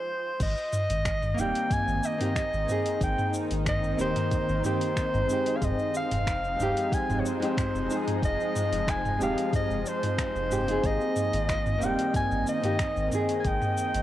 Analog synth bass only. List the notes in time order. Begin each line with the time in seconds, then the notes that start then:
0.40 G#1
0.90 G#1
1.38 D#1
1.88 G#1
2.53 G#1
3.01 G#1
3.51 G#1
3.99 D#1
4.49 G#1
5.14 G#1
5.62 F1
6.12 F1
6.60 D#1
7.09 F1
7.75 F1
8.23 F1
8.72 F1
9.21 D#1
9.70 F1
10.36 F1
10.83 G#1
11.33 G#1
11.81 D#1
12.31 G#1
12.97 G#1
13.45 G#1
13.94 G#1